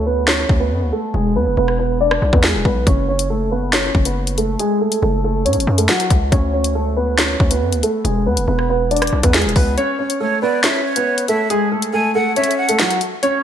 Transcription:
Already playing: D2
0.06 B3 B4
0.28 C#4 C#5, snare
0.49 D2, kick
0.60 B3 B4
0.71 F#2
0.82 D2
0.92 A3 A4
1.14 E1 G#3 G#4
1.36 E2 B3 B4
1.47 E1
1.57 E1 B3 B4
1.68 cross-stick
1.79 B3 B4
2.00 D4 D5
2.11 cross-stick
2.22 B1
2.33 E2 B3 B4, kick
2.44 G#3 G#4, snare
2.54 D1
2.65 B1 B3 B4, kick
2.87 F#1 C#4 C#5, kick, closed hi-hat
3.09 C#4 C#5
3.19 closed hi-hat
3.30 A3 A4
3.51 B3 B4
3.73 C#4 C#5, snare, closed hi-hat
3.95 F#1, kick
4.05 B3 B4, closed hi-hat
4.27 closed hi-hat
4.38 A3 A4, closed hi-hat
4.59 G#3 G#4, closed hi-hat
4.81 A3 A4
4.92 closed hi-hat
5.02 F#1 A3 A4
5.24 A3 A4
5.45 A2 C#4 C#5, closed hi-hat
5.53 F#1, closed hi-hat
5.60 closed hi-hat
5.67 F#2
5.78 A3 A4, closed hi-hat
5.89 F#3 F#4, snare, closed hi-hat
6.00 closed hi-hat
6.10 C#2, kick, closed hi-hat
6.32 D2 C#4 C#5, kick, closed hi-hat
6.53 C#4 C#5
6.64 closed hi-hat
6.75 A3 A4
6.97 B3 B4
7.18 C#4 C#5, snare, closed hi-hat
7.40 D2, kick
7.51 B3 B4, closed hi-hat
7.61 F#2
7.72 D2, closed hi-hat
7.83 A3 A4, closed hi-hat
8.05 E1 G#3 G#4, closed hi-hat
8.26 E2 B3 B4
8.37 E1, closed hi-hat
8.48 E1 B3 B4
8.59 cross-stick
8.69 B3 B4
8.91 D4 D5, closed hi-hat
8.96 closed hi-hat
9.02 cross-stick, closed hi-hat
9.07 closed hi-hat
9.13 B1
9.23 E2 B3 B4, kick, closed hi-hat
9.34 G#3 G#4, snare, closed hi-hat
9.42 D1, closed hi-hat
9.49 closed hi-hat
9.56 C#2 B3 B4, kick, open hi-hat
9.78 C#4 C#5, closed hi-hat
9.99 C#4 C#5
10.10 closed hi-hat
10.20 A3 A4 C#5
10.42 B3 B4 D5
10.64 C#4 C#5 E5, snare, closed hi-hat
10.85 C#5
10.96 B3 B4, closed hi-hat
11.18 closed hi-hat
11.28 A3 A4 E5, closed hi-hat
11.50 G#3 G#4, closed hi-hat
11.72 A3 A4
11.82 closed hi-hat
11.93 A3 A4 G#5
12.15 A3 A4 F#5
12.36 C#4 C#5 E5, closed hi-hat
12.44 closed hi-hat
12.51 closed hi-hat
12.58 F#5
12.69 A3 A4, closed hi-hat
12.79 F#3 F#4, snare, closed hi-hat
12.90 closed hi-hat
13.01 closed hi-hat
13.23 C#4 C#5, closed hi-hat

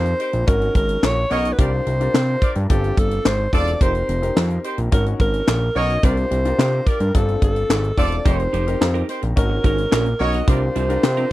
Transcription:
Already playing: F2 C4 D#4 G4 A#4 C5
0.06 closed hi-hat
0.20 D#4 G4 C5, closed hi-hat
0.33 A#1, closed hi-hat
0.47 G#1 C#4 D#4 F#4 A#4, kick, closed hi-hat
0.62 closed hi-hat
0.75 G#1 A#4, kick, closed hi-hat
0.89 closed hi-hat
1.03 A#1 C#5, snare, clap
1.30 B1 C#4 D#4 F#4 A#4 C#5 D#5, open hi-hat
1.45 closed hi-hat
1.53 B4
1.58 C2 D4 F4 G4 A#4 C5 D5, kick, closed hi-hat
1.86 C2, closed hi-hat
2.00 D4 F4 G4 A#4, closed hi-hat
2.14 C3, snare, clap
2.42 G4 A#4 D5, kick, closed hi-hat
2.55 G2, closed hi-hat
2.69 G1 C4 D4 F4 G4 A4, kick, closed hi-hat
2.84 closed hi-hat
2.97 G1 A4, kick, closed hi-hat
3.11 closed hi-hat
3.25 G#1 C5, snare, clap
3.53 E1 C4 D4 F4 A4 D5, kick, open hi-hat
3.67 closed hi-hat
3.81 F1 C4 D#4 G4 A#4 C5, kick, closed hi-hat
3.95 closed hi-hat
4.09 F1, closed hi-hat
4.22 C4 D#4 G4 A#4, closed hi-hat
4.37 F2, snare, clap
4.50 closed hi-hat
4.64 D#4 G4 C5, closed hi-hat
4.78 A#1, closed hi-hat
4.92 G#1 C#4 D#4 F#4 A#4, kick, closed hi-hat
5.06 closed hi-hat
5.20 G#1 A#4, kick, closed hi-hat
5.34 closed hi-hat
5.48 A#1, snare, clap
5.75 B1 C#4 D#4 F#4 A#4 C#5 D#5, open hi-hat
5.90 closed hi-hat
6.03 C2 D4 F4 G4 A#4 C5 D5, kick, closed hi-hat
6.17 closed hi-hat
6.31 C2, closed hi-hat
6.45 D4 F4 G4 A#4, closed hi-hat
6.58 C3, snare, clap
6.86 G4 A#4 D5, kick, closed hi-hat
7.00 G2, closed hi-hat
7.14 G1 C4 D4 F4 A4, kick, closed hi-hat
7.28 closed hi-hat
7.42 G1 A4, kick, closed hi-hat
7.56 closed hi-hat
7.70 G#1, snare, clap
7.84 closed hi-hat
7.97 E1 C4 D4 F4 A4 D5, kick, open hi-hat
8.12 closed hi-hat
8.25 F1 C4 D#4 G4 A#4 C5, kick, closed hi-hat
8.40 closed hi-hat
8.53 F1 D#4 G4 C5, closed hi-hat
8.67 C4 D#4 G4 A#4, closed hi-hat
8.81 F2, snare, clap
8.94 D#4 G4 A#4, closed hi-hat
9.08 D#4 G4 C5, muted clean electric guitar stroke, closed hi-hat
9.22 A#1, muted clean electric guitar stroke, closed hi-hat
9.36 G#1 C#4 D#4 F#4 A#4, kick, closed hi-hat
9.50 muted clean electric guitar stroke
9.64 G#1 C#4 F#4 A#4, kick, closed hi-hat
9.78 muted clean electric guitar stroke, closed hi-hat
9.91 A#1 C#4 F#4 A#4, snare, clap
10.06 muted clean electric guitar stroke, closed hi-hat
10.20 B1 C#4 D#4 F#4 A#4 C#5 D#5, muted clean electric guitar stroke, open hi-hat
10.33 C#4 F#4 A#4, closed hi-hat
10.47 C2 D4 F4 G4 A#4 C5 D5, kick, closed hi-hat
10.75 C2 D4 F4 C5, closed hi-hat
10.89 D4 F4 G4 A#4, closed hi-hat
11.03 C3, muted clean electric guitar stroke, snare, clap
11.17 D4 F4 A#4, closed hi-hat

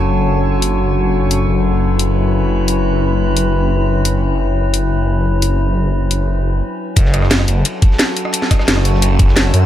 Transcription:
Already playing: F#1 F#3 C#4 F#4 A4
0.62 open hi-hat
1.31 open hi-hat
1.48 F#1 E4 B4
1.99 open hi-hat
2.68 open hi-hat
3.37 open hi-hat
4.05 open hi-hat
4.74 open hi-hat
5.42 open hi-hat
6.11 open hi-hat
6.96 F#1 F#3 C#4 F#4 A4, kick, closed hi-hat, ride
7.05 snare
7.14 cross-stick, closed hi-hat, ride
7.22 cross-stick, snare
7.30 snare, closed hi-hat, ride
7.39 cross-stick, snare
7.48 F#1, open hi-hat, ride
7.65 closed hi-hat, ride
7.82 kick, closed hi-hat, ride
7.91 snare
7.99 snare, closed hi-hat, ride
8.09 ride
8.17 open hi-hat, ride
8.25 cross-stick
8.33 closed hi-hat, ride
8.42 snare
8.51 kick, cross-stick, closed hi-hat, ride
8.59 cross-stick, snare
8.68 F#1, snare, closed hi-hat, ride
8.77 cross-stick, snare
8.85 snare, open hi-hat, ride
8.94 snare
9.02 closed hi-hat, ride
9.19 kick, closed hi-hat, ride
9.28 snare
9.37 snare, closed hi-hat, ride
9.54 F#2, open hi-hat, ride

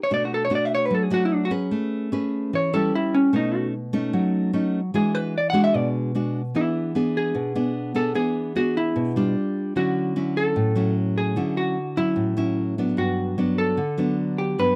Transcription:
0.03 C#5
0.10 B2 A3 D4 F#4 D5
0.25 F#4
0.34 A4
0.45 C#5
0.50 A3 D4 F#4
0.55 D5
0.65 E5
0.75 C#5
0.86 B4
0.91 F#3
0.95 A4
1.04 G#4
1.10 A3 D4 F#4
1.25 E4
1.34 D4
1.45 F#4
1.51 C#4 G#4 B4
1.71 A3
2.12 C#4 G#4 B4
2.53 E3 C#5
2.73 G3 C#4 E4 A4
2.95 E4
3.15 C#4
3.33 B2 A3 C#4 D#4
3.55 F#4
3.93 A3 C#4 D#4
4.13 F#3
4.53 A3 C#4 D#4
4.94 E3 G#3 D4 F#4 G#4
5.15 B4
5.38 D5
5.50 G#3 F#5
5.54 D4 F#4
5.64 E5
5.74 B2 D5
6.15 G#3 D4 F#4
6.55 E3 B3 D4 E4 G#4
6.95 B3 D4 G#4
7.17 G#4
7.35 B2
7.55 B3 D4 G#4
7.95 B3 D4 G#4 A4
8.15 E3 B3 D4 G#4
8.56 B3 D4 F#4 G#4
8.77 E4
8.96 B2
9.16 G3 D4 F4
9.76 D3 F#3 C#4 E4 F#4
10.16 F#3 C#4 E4
10.37 A4
10.56 A2
10.76 F#3 C#4 E4
11.18 G#4
11.36 D3 F#3 C#4 E4
11.57 F#4
11.97 F#3 C#4 E4
12.16 A2
12.37 F#3 C#4 E4
12.78 F#3 B3 D4
12.97 G2 F#4
13.38 F#3 B3 D4
13.58 A4
13.77 D3
13.98 F#3 B3 D4
14.38 G4
14.59 G2 F#3 B3 D4 B4

